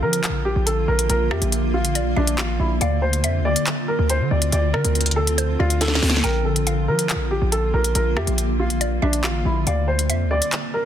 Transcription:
Already playing: D3 A#3 F4 F5
0.02 F3 A#4
0.13 closed hi-hat
0.24 clap, closed hi-hat
0.29 A#1
0.45 G4
0.56 A#1
0.66 A4, closed hi-hat
0.88 A#1 A#4
0.99 closed hi-hat
1.09 A#1 A#4, closed hi-hat
1.31 F2 G4 E5, cross-stick
1.42 A#1, closed hi-hat
1.52 closed hi-hat
1.74 F4
1.85 closed hi-hat
1.95 D5, closed hi-hat
2.16 A#1 D4 E5
2.27 closed hi-hat
2.38 A1 F4, clap, closed hi-hat
2.60 A#1 E4
2.81 D2 C4 F4 D5 F5, closed hi-hat
3.02 C5
3.13 closed hi-hat
3.24 F2 E5, closed hi-hat
3.40 D2
3.45 D5
3.56 closed hi-hat
3.67 clap, closed hi-hat
3.88 A#4
3.99 D2
4.10 C5, closed hi-hat
4.20 D3
4.31 D2 D5
4.42 closed hi-hat
4.52 D2 D5, closed hi-hat
4.73 D3 A#4 D5, cross-stick
4.85 D2, closed hi-hat
4.95 closed hi-hat
5.01 closed hi-hat
5.06 closed hi-hat
5.11 closed hi-hat
5.16 A4
5.27 closed hi-hat
5.38 C5, closed hi-hat
5.59 D2 F4 D5
5.70 closed hi-hat
5.81 A4, snare, closed hi-hat
5.88 snare
5.95 snare
6.02 D2, snare, open hi-hat
6.10 snare
6.17 snare
6.24 A#1 A#3 A#4 G5, closed hi-hat
6.45 A4
6.56 closed hi-hat
6.67 F5, closed hi-hat
6.88 F3 A#4
6.99 closed hi-hat
7.09 clap, closed hi-hat
7.15 A#1
7.31 G4
7.42 A#1
7.52 A4, closed hi-hat
7.74 A#1 A#4
7.84 closed hi-hat
7.95 A#1 A#4, closed hi-hat
8.17 F2 G4 E5, cross-stick
8.27 A#1, closed hi-hat
8.38 closed hi-hat
8.60 F4
8.70 closed hi-hat
8.81 D5, closed hi-hat
9.02 A#1 D4 E5
9.13 closed hi-hat
9.24 A1 F4, clap, closed hi-hat
9.45 A#1 E4
9.67 D2 D3 C4 F4 D5 F5, closed hi-hat
9.88 C5
9.99 closed hi-hat
10.09 F2 E5, closed hi-hat
10.26 D2
10.31 D5
10.42 closed hi-hat
10.52 clap, closed hi-hat
10.74 A#4

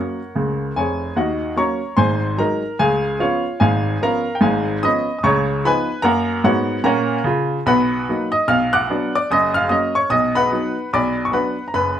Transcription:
Already playing: F#3 A#3 C#4 A#4 C#5 F#5
0.35 C#2 C#3
0.76 F1 F2 G#4 C#5 G#5
1.16 D#2 D#3 F#4 D#5 F#5
1.56 F#3 A#3 C#4 C#5 A#5 C#6
1.97 G#1 G#2 C5 G#5 C6
2.38 F#3 G#3 D#4 A#4 A#5
2.79 C#2 C#3 G#4 F5 G#5
3.20 F3 B3 C#4 F4 C#5 F5
3.60 G#1 G#2 G#4 F5 G#5
4.01 F3 B3 C#4 A#4 F5 A#5
4.35 G5
4.41 G#1 G#2 G#4 F5 G#5
4.83 F3 B3 C#4 D#5 B5 D#6
5.19 D#6
5.23 C#2 C#3 C#5 A#5 C#6
5.65 F3 B3 D#4 B4 G#5 B5
6.02 F#2 A#3 A#4 F#5 A#5
6.44 G#2 B3 F#4 C#5 F#5
6.84 A#2 C#4 A#4 F#5 A#5
7.24 C#3 F4
7.66 B1 B2 B4 F#5 B5
8.09 F#3 A#3 D#4
8.32 D#5 D#6
8.48 B1 B2 F5 F6
8.73 F#5 D6 F#6
8.90 F#3 B3 D4
9.15 D5 D6
9.31 F#1 F#2 D#5 D#6
9.54 F5 F6
9.69 F#3 A#3 C#4 D#5 D#6
9.95 C#5 C#6
10.10 B1 B2 D#5 D#6
10.35 B4 F#5 B5
10.51 F#3 B3 D#4
10.93 B1 B2 D5 B5 D6
11.25 C#6
11.32 F#3 B3 D4 B4 F#5 B5
11.68 A#5
11.74 F#1 F#2 B4 B5

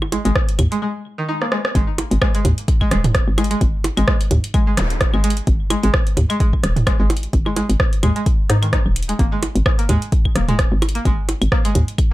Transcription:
Already playing: G#1
0.02 percussion blips, claves
0.12 G#3, closed hi-hat, percussion blips
0.25 G#1 G#3, closed hi-hat
0.36 kick, cross-stick
0.49 closed hi-hat
0.59 D#2, closed hi-hat, mid tom, claves
0.72 G#3, closed hi-hat
0.82 G#3
1.18 D#3
1.29 D#4
1.42 A#3, cross-stick
1.52 G#3, cross-stick
1.65 cross-stick
1.75 G#1 G#3, kick, closed hi-hat
1.98 closed hi-hat, percussion blips
2.11 G#1, closed hi-hat
2.22 G#3, kick, cross-stick, claves
2.35 G#3, closed hi-hat
2.45 D#2, closed hi-hat, mid tom
2.58 closed hi-hat
2.68 kick, closed hi-hat
2.81 G#3, kick, claves
2.91 D#1 G#3, cross-stick, closed hi-hat
3.04 closed hi-hat, mid tom
3.15 kick, cross-stick, closed hi-hat
3.28 G#1
3.38 G#3, closed hi-hat, percussion blips, claves
3.44 closed hi-hat
3.51 G#3, closed hi-hat
3.61 G#1, kick, closed hi-hat
3.84 closed hi-hat, percussion blips
3.97 G#1 G#3, closed hi-hat, claves
4.08 G#3, kick, cross-stick
4.21 closed hi-hat
4.31 D#2, closed hi-hat, mid tom
4.44 closed hi-hat
4.54 G#3, kick, closed hi-hat, claves
4.67 G#3
4.77 D#1, cross-stick, closed hi-hat, zap
4.90 closed hi-hat
5.01 kick, cross-stick, closed hi-hat
5.14 G#1 G#3, claves
5.24 G#3, closed hi-hat
5.30 closed hi-hat
5.37 closed hi-hat
5.47 G#1, kick, closed hi-hat
5.70 G#3, closed hi-hat, percussion blips, claves
5.83 G#1 G#3, closed hi-hat
5.94 kick, cross-stick
6.07 closed hi-hat
6.17 D#2, closed hi-hat, mid tom
6.30 G#3, closed hi-hat, claves
6.40 G#3, kick, closed hi-hat
6.53 kick
6.64 D#1, cross-stick, closed hi-hat
6.76 closed hi-hat, mid tom
6.87 G#3, kick, cross-stick, closed hi-hat, claves
7.00 G#1 G#3
7.10 closed hi-hat, percussion blips
7.17 closed hi-hat
7.23 closed hi-hat
7.33 G#1, kick, closed hi-hat
7.46 G#3, percussion blips, claves
7.56 G#3, closed hi-hat, percussion blips
7.69 G#1, closed hi-hat
7.80 kick, cross-stick
7.93 closed hi-hat
8.03 D#2 G#3, closed hi-hat, mid tom, claves
8.16 G#3, closed hi-hat
8.26 kick, closed hi-hat
8.50 G#2 D#4, cross-stick, closed hi-hat
8.62 D#3, closed hi-hat, claves
8.73 D#4, kick, cross-stick, closed hi-hat
8.86 D#1
8.96 closed hi-hat
9.03 closed hi-hat
9.09 G#3, closed hi-hat
9.19 G#1 A#3, kick, closed hi-hat
9.32 G#3
9.43 closed hi-hat, percussion blips
9.55 G#1, closed hi-hat
9.66 kick, cross-stick, claves
9.79 A#3, closed hi-hat
9.89 D#2 G#3, closed hi-hat, mid tom
10.02 closed hi-hat
10.12 kick, closed hi-hat
10.25 kick, claves
10.36 D#1 A#3, cross-stick, closed hi-hat
10.48 G#3, closed hi-hat, mid tom
10.59 kick, cross-stick, closed hi-hat
10.72 G#1
10.82 closed hi-hat, percussion blips, claves
10.89 closed hi-hat
10.95 A#3, closed hi-hat
11.05 G#1 G#3, kick, closed hi-hat
11.29 closed hi-hat, percussion blips
11.42 G#1, closed hi-hat, claves
11.52 A#3, kick, cross-stick
11.65 G#3, closed hi-hat
11.75 D#2, closed hi-hat, mid tom
11.88 closed hi-hat
11.98 kick, closed hi-hat, claves

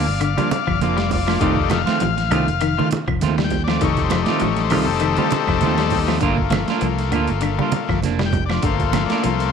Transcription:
Already playing: D3 D5 F5
0.08 G1, muted clean electric guitar stroke
0.21 D3 D5 F5, muted clean electric guitar stroke, closed hi-hat, high conga, claves
0.38 F3 G3 A#3 D4 F4, closed hi-hat, high conga
0.51 D5 F5, muted clean electric guitar stroke, closed hi-hat, high conga
0.67 G1 F3, kick, claves
0.81 F1 F3 A#3 D4 F4 D5, closed hi-hat, high conga
0.97 G3, muted clean electric guitar stroke, snare, closed hi-hat
1.10 F4 D5, muted clean electric guitar stroke, kick, open hi-hat, low conga
1.28 F3 A#3 D4 F4, snare, claves
1.39 F1 D#3 G3 A3 C4 D#4 F4 D5, kick, closed hi-hat, high conga
1.57 muted clean electric guitar stroke, kick
1.70 F3 F5, muted clean electric guitar stroke, snare, closed hi-hat, high conga, claves
1.86 D#3 A3 C4 F4, snare, closed hi-hat
2.00 A1 F3, closed hi-hat, high conga, low conga
2.17 muted clean electric guitar stroke, snare, closed hi-hat
2.31 C2 D#3 A3 C4 F4, closed hi-hat, low conga, claves
2.48 F1, muted clean electric guitar stroke, closed hi-hat
2.61 D#3, muted clean electric guitar stroke, closed hi-hat, high conga, claves
2.78 D#3 A3 F4, muted clean electric guitar stroke, high conga
2.91 muted clean electric guitar stroke, closed hi-hat, high conga
3.08 F1 F3, kick, claves
3.21 D#2 D#3 A3 C4 F4, snare, closed hi-hat, high conga
3.38 G3, muted clean electric guitar stroke, snare, high conga
3.44 G5
3.50 muted clean electric guitar stroke, kick, snare, closed hi-hat, low conga
3.64 D5, snare, claves
3.68 F3 A3 C4 F4
3.81 F1 D#3 G3 A3 D#4 C#5, kick, snare, closed hi-hat, high conga
3.97 muted clean electric guitar stroke, kick, snare, closed hi-hat
4.04 C5
4.10 F3, muted clean electric guitar stroke, snare, closed hi-hat, high conga, claves
4.24 D5, snare, closed hi-hat
4.28 D#3 A3 C4 F4
4.40 A1 F3, closed hi-hat, high conga, low conga
4.44 C#5
4.56 muted clean electric guitar stroke, snare, closed hi-hat
4.64 C5
4.70 C2 D#3 A3 F4, muted clean electric guitar stroke, open hi-hat, high conga, low conga, claves
4.83 C4 A4
4.87 F1, muted clean electric guitar stroke
5.00 D#3, muted clean electric guitar stroke, closed hi-hat, high conga, claves
5.17 D#3 G3 A3 C4 F4, closed hi-hat, high conga
5.31 muted clean electric guitar stroke, snare, closed hi-hat, high conga
5.47 F1 F3, kick, snare, claves
5.61 D#2 D#3 A3 C4 F4, snare, closed hi-hat, high conga
5.78 G3, muted clean electric guitar stroke, snare, closed hi-hat
5.90 muted clean electric guitar stroke, kick, open hi-hat, low conga
6.08 F3 A3 C4 F4, snare, claves
6.21 G1 D3 A3 A#3 D4 F4, kick, closed hi-hat, high conga
6.38 muted clean electric guitar stroke, kick
6.50 F3, muted clean electric guitar stroke, snare, closed hi-hat, high conga, claves
6.68 A#3 D4 F4, snare, closed hi-hat
6.81 C2 F3, closed hi-hat, high conga
6.99 muted clean electric guitar stroke, snare, closed hi-hat
7.12 D2 D3 A#3 D4 F4, closed hi-hat, low conga, claves
7.28 G1, closed hi-hat
7.32 muted clean electric guitar stroke
7.41 D3, closed hi-hat, high conga, claves
7.45 muted clean electric guitar stroke
7.59 G3 A#3 D4 F4, high conga
7.72 A3 A#3 F4, muted clean electric guitar stroke, closed hi-hat, high conga
7.89 G1 F3, kick, snare, claves
8.02 F1 A#3 D4, snare, closed hi-hat, high conga
8.19 G3, snare, high conga
8.23 G5, muted clean electric guitar stroke
8.32 kick, closed hi-hat, low conga
8.37 muted clean electric guitar stroke
8.46 D5, claves
8.50 F3 F4, snare
8.55 D4
8.63 G1 D3 A3 A#3 F4 C5, kick, closed hi-hat, high conga
8.80 muted clean electric guitar stroke, kick, closed hi-hat
8.85 C5
8.93 F3, muted clean electric guitar stroke, snare, closed hi-hat, high conga, claves
9.06 D5, closed hi-hat
9.10 A#3 D4 F4, muted fingered electric bass stroke, snare
9.23 C2 F3 C5, closed hi-hat, high conga
9.40 muted clean electric guitar stroke, snare, closed hi-hat
9.46 C5

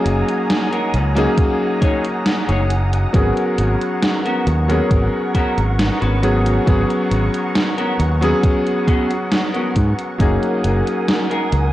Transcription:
Already playing: F#3 A#3 C#4 D#4 G#4 F#5 G#5 A#5 D#6
0.05 F#1, closed hi-hat
0.28 closed hi-hat
0.50 snare, closed hi-hat
0.72 D#4 G#4 A#4, closed hi-hat
0.94 C#2, closed hi-hat
1.15 F#3 A#3 C#4 D#4 G#4, muted clean electric guitar stroke, closed hi-hat
1.38 muted clean electric guitar stroke, kick, closed hi-hat
1.82 D#4 G#4 C#5, kick, closed hi-hat
2.05 closed hi-hat
2.26 muted clean electric guitar stroke, snare, closed hi-hat
2.49 F#1 D#4 G#4 C#5, closed hi-hat
2.70 closed hi-hat
2.93 muted clean electric guitar stroke, closed hi-hat
3.13 G#1 F#3 B3 C#4 G#4 A#4 C#6, kick, closed hi-hat
3.37 closed hi-hat
3.58 G#1, closed hi-hat
3.81 closed hi-hat
4.03 snare, closed hi-hat
4.25 B3 C#4 F#4 A#4, closed hi-hat
4.47 D#2, closed hi-hat
4.68 F#3 B3 C#4 G#4 A#4, muted clean electric guitar stroke, closed hi-hat
4.91 G#1, muted clean electric guitar stroke, kick, closed hi-hat
5.35 B3 C#4 F#4 A#4, kick, closed hi-hat
5.58 G#1, closed hi-hat
5.79 muted clean electric guitar stroke, snare, closed hi-hat
6.01 G#1 B3 C#4 F#4 B4, closed hi-hat
6.22 F#3 B3 C#4 G#4, closed hi-hat
6.45 muted clean electric guitar stroke, closed hi-hat
6.66 G#1 F#3 B3 C#4 G#4, kick, closed hi-hat
6.90 closed hi-hat
7.11 G#1, closed hi-hat
7.34 closed hi-hat
7.55 snare, closed hi-hat
7.78 B3 C#4 F#4 A#4, closed hi-hat
7.99 D#2, closed hi-hat
8.21 F#3 B3 C#4 G#4, muted clean electric guitar stroke, closed hi-hat
8.43 muted clean electric guitar stroke, kick, closed hi-hat
8.67 closed hi-hat
8.87 B3 C#4 F#4 G#4, kick, closed hi-hat
9.11 closed hi-hat
9.32 muted clean electric guitar stroke, snare, closed hi-hat
9.54 B3 C#4 F#4 A#4, closed hi-hat
9.76 G#2, kick, closed hi-hat
9.99 muted clean electric guitar stroke, closed hi-hat
10.18 F#1 F#3 A#3 C#4 D#4 G#4 A#4 G#5 D#6, kick, closed hi-hat
10.43 closed hi-hat
10.64 F#1, closed hi-hat
10.87 closed hi-hat
11.08 snare, closed hi-hat
11.31 D#4 G#4 A#4, closed hi-hat
11.52 C#2, closed hi-hat

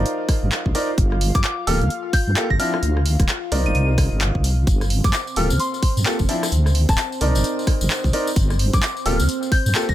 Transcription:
Already playing: D#4 F4 A#4 C5 D5 F5
0.06 closed hi-hat
0.29 kick, cross-stick, open hi-hat
0.43 G1
0.52 clap, closed hi-hat
0.66 C2, kick
0.75 D#4 A#4 C5 D5, open hi-hat
0.98 G1, kick, closed hi-hat
1.12 cross-stick
1.21 open hi-hat
1.35 G2 D6, kick, cross-stick, closed hi-hat
1.44 D6, clap, closed hi-hat
1.67 D1 A#3 F4 G4 A4 F6, open hi-hat
1.81 D2, closed hi-hat
1.90 closed hi-hat
2.13 G6, kick, open hi-hat
2.27 G2
2.36 A#3 F4 G4 A4, clap, closed hi-hat
2.50 G1 A#6, kick
2.59 F3 C4 D4 E4 F6, open hi-hat
2.74 cross-stick
2.82 D2, closed hi-hat
2.97 cross-stick
3.06 open hi-hat
3.20 D1, kick, cross-stick, closed hi-hat
3.29 clap, closed hi-hat
3.52 C2 D#4 A#4 C5 D5, open hi-hat
3.66 G1 D#7, closed hi-hat
3.75 C2 D#7, closed hi-hat
3.98 kick, cross-stick, open hi-hat
4.12 G1
4.21 clap, closed hi-hat
4.35 C2, kick
4.44 open hi-hat
4.67 G1 C4 C5, kick, closed hi-hat, tambourine
4.81 cross-stick, tambourine
4.90 open hi-hat
5.04 G2 D6, kick, cross-stick, closed hi-hat, tambourine
5.13 D6, clap, closed hi-hat, tambourine
5.27 tambourine
5.36 D1 A#3 F4 G4 A4 F6, open hi-hat
5.50 D2, closed hi-hat, tambourine
5.59 C6, closed hi-hat, tambourine
5.74 tambourine
5.83 kick, open hi-hat
5.97 G2, tambourine
6.06 A#3 F4 G4 A4, clap, closed hi-hat, tambourine
6.19 G1, kick, tambourine
6.29 F3 C4 D4 E4, open hi-hat
6.43 cross-stick, tambourine
6.52 D2, closed hi-hat, tambourine
6.66 cross-stick, tambourine
6.75 open hi-hat
6.89 D1 A5, kick, cross-stick, closed hi-hat, tambourine
6.98 A5, clap, closed hi-hat, tambourine
7.12 tambourine
7.21 C2 D#4 A#4 C5 D5, open hi-hat
7.35 G1, closed hi-hat, tambourine
7.44 closed hi-hat, tambourine
7.59 tambourine
7.67 kick, cross-stick, open hi-hat
7.81 G1, tambourine
7.90 clap, closed hi-hat, tambourine
8.04 C2, kick, tambourine
8.13 D#4 A#4 C5 D5, open hi-hat
8.27 tambourine
8.36 G1, kick, closed hi-hat, tambourine
8.50 cross-stick, tambourine
8.59 open hi-hat
8.73 G2 D6, kick, cross-stick, closed hi-hat, tambourine
8.83 D6, clap, closed hi-hat, tambourine
8.97 tambourine
9.05 D1 A#3 F4 G4 A4 F6, open hi-hat
9.20 D2, closed hi-hat, tambourine
9.29 closed hi-hat, tambourine
9.43 tambourine
9.52 G6, kick, open hi-hat
9.66 G2, tambourine
9.75 A#3 F4 G4 A4, clap, closed hi-hat, tambourine
9.89 G1 A#6, kick, tambourine

